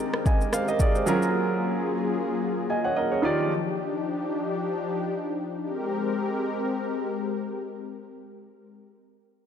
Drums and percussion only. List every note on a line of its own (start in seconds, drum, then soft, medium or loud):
0.14 cross-stick medium
0.26 kick loud
0.26 shaker medium
0.41 shaker medium
0.53 cross-stick medium
0.53 shaker medium
0.68 shaker medium
0.79 kick loud
0.79 shaker medium
0.95 shaker soft
1.07 shaker medium
1.22 shaker soft